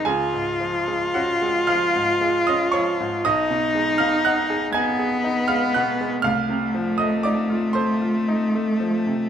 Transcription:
0.05 grand piano C#2 G#4 G#5, cello F4
0.33 grand piano G#2
0.60 grand piano F3
0.88 grand piano G#3
1.14 grand piano C#4 F#4 F#5
1.42 grand piano G#3
1.67 grand piano F3 F5 F6
1.95 grand piano G#2
2.21 grand piano G#3
2.47 grand piano C#4 D#5 D#6
2.72 grand piano F3 C#5 C#6
3.00 grand piano G#2
3.24 grand piano B1 D#5 D#6, cello D#4
3.50 grand piano B2
3.75 grand piano G#3
3.98 grand piano B2 F5 F6
4.25 grand piano D#4 F#5 F#6
4.50 grand piano G#4
4.73 cello B3, grand piano D#4 G#5 G#6
4.99 grand piano G#4
5.24 grand piano D#4
5.48 grand piano G#3 F5 F6
5.74 grand piano B2 F#5 F#6
6.01 grand piano G#3
6.22 grand piano C2 F5 F6, cello A3
6.49 grand piano C3
6.75 grand piano F3
6.98 grand piano A3 D#5 D#6
7.23 grand piano D#4 D5 D6
7.50 grand piano F4
7.73 grand piano A4 C5 C6
8.01 grand piano F4
8.28 grand piano D#4
8.55 grand piano A3
8.80 grand piano F3
9.06 grand piano C3

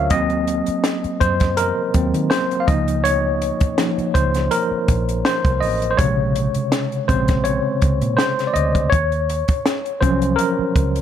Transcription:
Already playing: fingered electric bass D2, tine electric piano F#3 C#4 F4 A#4 C5 C#5 E5 F5
0.10 fingered electric bass D#2, tine electric piano F#3 A#3 C4 D#5, kick, closed hi-hat
0.30 closed hi-hat
0.47 closed hi-hat
0.66 muted fingered electric bass stroke, closed hi-hat
0.84 snare, closed hi-hat
1.04 muted fingered electric bass stroke, closed hi-hat
1.20 fingered electric bass F#2, tine electric piano C5, kick, closed hi-hat
1.40 kick, snare, closed hi-hat
1.57 tine electric piano A#4, closed hi-hat
1.94 fingered electric bass D#2, tine electric piano F#3 A#3 C4, kick, closed hi-hat
2.14 fingered electric bass D#3, closed hi-hat
2.30 tine electric piano C5, snare, closed hi-hat
2.51 closed hi-hat
2.60 tine electric piano F5
2.68 fingered electric bass C#2, tine electric piano F3 A#3 D#4 D#5, kick, closed hi-hat
2.88 closed hi-hat
3.04 tine electric piano C#5, closed hi-hat
3.42 closed hi-hat
3.60 muted fingered electric bass stroke, kick, closed hi-hat
3.78 tine electric piano F3 A#3 D#4, snare, closed hi-hat
3.98 muted fingered electric bass stroke, closed hi-hat
4.14 fingered electric bass C#2, tine electric piano C5, kick, closed hi-hat
4.34 snare, closed hi-hat
4.51 tine electric piano A#4, closed hi-hat
4.71 muted fingered electric bass stroke
4.88 fingered electric bass A#1, kick, closed hi-hat
5.09 closed hi-hat
5.25 tine electric piano C5, snare, closed hi-hat
5.45 fingered electric bass C2, kick, closed hi-hat
5.61 fingered electric bass A1, tine electric piano D#5, open hi-hat
5.82 closed hi-hat
5.91 tine electric piano C5
5.97 fingered electric bass A#1, tine electric piano C3 C#3 G#3 C#5, kick, closed hi-hat
6.36 closed hi-hat
6.54 muted fingered electric bass stroke, closed hi-hat
6.72 snare, closed hi-hat
6.92 closed hi-hat
7.08 fingered electric bass A#1, tine electric piano C#3 G#3 C4 C5, kick, closed hi-hat
7.28 kick, snare, closed hi-hat
7.44 tine electric piano C#5, closed hi-hat
7.82 fingered electric bass C#2, kick, closed hi-hat
8.01 fingered electric bass A#2, closed hi-hat
8.17 tine electric piano C5, snare, closed hi-hat
8.39 snare, closed hi-hat
8.47 tine electric piano D5
8.54 fingered electric bass D2, tine electric piano D#5, closed hi-hat
8.75 kick, closed hi-hat
8.90 fingered electric bass D#2, tine electric piano C#5, kick, closed hi-hat
9.12 closed hi-hat
9.30 closed hi-hat
9.48 muted fingered electric bass stroke, kick, closed hi-hat
9.66 snare, closed hi-hat
9.86 closed hi-hat
10.01 fingered electric bass C2, tine electric piano F3 F#3 C#4 C5, kick, closed hi-hat
10.22 closed hi-hat
10.36 tine electric piano A#4, closed hi-hat
10.59 muted fingered electric bass stroke
10.76 fingered electric bass C#2, kick, closed hi-hat
10.96 closed hi-hat

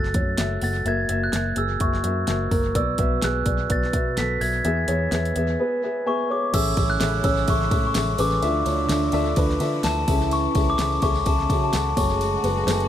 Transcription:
Already playing: fingered electric bass F#1, upright piano A3 F#4 G#4 A4 E5, glockenspiel A6
0.04 snare
0.14 fingered electric bass F#2, upright piano A3 F#4 C#5, kick, closed hi-hat
0.38 fingered electric bass F#1, upright piano A3 F#4 E5, snare, closed hi-hat
0.61 fingered electric bass F#1, upright piano A3 F#4 F#5, glockenspiel A6, open hi-hat
0.85 fingered electric bass F#1, upright piano A#3 F#4 E5, glockenspiel G#6, closed hi-hat
1.09 fingered electric bass F#1, upright piano A#3 F#4 E5, closed hi-hat
1.24 glockenspiel F#6
1.33 fingered electric bass F#1, upright piano A#3 F#4 E5, snare, closed hi-hat
1.56 fingered electric bass F#1, upright piano A#3 F#4 G#4, glockenspiel E6, closed hi-hat
1.80 fingered electric bass F#1, upright piano A#3 F#4 E5, glockenspiel C#6, kick, closed hi-hat
1.94 snare
2.03 fingered electric bass F#2, upright piano A#3 F#4 E5, closed hi-hat
2.27 fingered electric bass F#1, upright piano A#3 F#4 E5, snare, closed hi-hat
2.51 fingered electric bass F#1, upright piano A#3 F#4 A#4, kick, open hi-hat
2.75 fingered electric bass B1, upright piano B2 B3 F#4 D5, glockenspiel E6, kick, closed hi-hat
2.98 fingered electric bass B1, upright piano B3 F#4 E5, kick, closed hi-hat
3.22 fingered electric bass B1, upright piano B3 F#4 G#4, glockenspiel F#6, snare, closed hi-hat
3.46 fingered electric bass B1, upright piano B3 F#4 D5, kick, closed hi-hat
3.69 fingered electric bass B1, upright piano B3 F#4 D5, glockenspiel A6, kick, closed hi-hat
3.83 snare
3.93 fingered electric bass B2, upright piano B3 F#4 E5, kick, closed hi-hat
4.17 fingered electric bass B1, upright piano B3 F#4 A4, glockenspiel B6, snare, closed hi-hat
4.41 fingered electric bass B1, upright piano B3 F#4 E5, glockenspiel G#6, open hi-hat
4.65 fingered electric bass E2, upright piano E3 B3 G#4 E5, closed hi-hat
4.88 fingered electric bass E2, upright piano B3 G#4 C#5, closed hi-hat
5.11 fingered electric bass E2, upright piano B3 G#4 E5, snare, closed hi-hat
5.25 closed hi-hat
5.36 fingered electric bass E2, upright piano B3 G#4 E5, closed hi-hat
5.59 upright piano B3 G#4 B4
5.83 upright piano B3 G#4 E5
6.06 upright piano B3 G#4 E5 G#5, glockenspiel C#6
6.30 upright piano B3 G#4 C#5 E5, glockenspiel D6
6.53 fingered electric bass A1, upright piano A2 C#4 G#4 A4 E5, french horn section C#3 C#4, string section C#3 E3 G#3 E4, glockenspiel E6, kick, crash, ride, tambourine
6.77 fingered electric bass A1, upright piano C#4 G#4 A4 E5, kick, ride, tambourine
6.90 glockenspiel F#6
7.00 fingered electric bass A1, upright piano C#4 G#4 A4 E5, snare, ride, tambourine
7.23 fingered electric bass A1, upright piano C#4 G#4 A4 C#5, glockenspiel E6, kick, ride, tambourine
7.37 tambourine
7.47 fingered electric bass A1, upright piano C#4 G#4 A4 E5, glockenspiel C#6, kick, ride, tambourine
7.61 snare
7.71 fingered electric bass A2, upright piano C#4 G#4 A4 E5, kick, ride, tambourine
7.87 glockenspiel C#6
7.95 fingered electric bass A1, upright piano C#4 G#4 A4 E5, snare, ride, tambourine
8.18 fingered electric bass A1, upright piano C#4 G#4 A4 B4, glockenspiel D6, open hi-hat, ride, tambourine
8.32 tambourine
8.42 fingered electric bass D2, french horn section D3 D4, upright piano D3 D4 F4 A4 E5, string section D3 F3 E4, ride, tambourine
8.65 fingered electric bass D2, upright piano D4 F4 A4 C#5, ride, tambourine
8.89 fingered electric bass D2, upright piano D4 F4 A4 E5, snare, ride, tambourine
9.03 tambourine
9.12 fingered electric bass D2, upright piano D4 F4 A4 E5, ride, tambourine
9.36 fingered electric bass D2, upright piano D4 F4 A4 B4, kick, ride, tambourine
9.50 snare
9.60 fingered electric bass D3, upright piano D4 F4 A4 E5, ride, tambourine
9.83 fingered electric bass D2, upright piano D4 F4 A4 E5, glockenspiel A5, snare, ride, tambourine
10.08 fingered electric bass C#2, upright piano C#3 C#4 G#4 A4 E5, string section C#3, french horn section E3 E4, kick, open hi-hat, ride, tambourine
10.22 tambourine
10.31 glockenspiel C#6, ride, tambourine
10.55 fingered electric bass C#2, upright piano C#4 G#4 A4 E5, kick, ride, tambourine
10.70 glockenspiel D6
10.78 fingered electric bass C#2, upright piano C#4 G#4 A4 E5, snare, ride, tambourine
10.92 tambourine
11.02 fingered electric bass C#2, upright piano C#4 G#4 A4 E5, glockenspiel C#6, kick, ride, tambourine
11.15 tambourine
11.25 fingered electric bass C#2, upright piano C#4 G#4 A4 E5, glockenspiel A5, kick, ride, tambourine
11.39 snare
11.50 fingered electric bass C#3, french horn section F#3 F#4, upright piano C#4 G#4 A4 E5, kick, ride, tambourine
11.64 glockenspiel A5
11.73 fingered electric bass C#2, upright piano C#4 G#4 A4 F#5, snare, ride, tambourine
11.96 fingered electric bass F#1, string section F#3 F#4, french horn section G#3 G#4, upright piano A3 F#4 G#4 C#5, glockenspiel C#6, kick, open hi-hat, ride, tambourine
12.11 tambourine
12.21 ride, tambourine
12.44 fingered electric bass F#1, upright piano A3 F#4 G#4 B4, ride, tambourine
12.67 fingered electric bass F#1, upright piano A3 F#4 G#4 B4, snare, ride, tambourine
12.80 ride

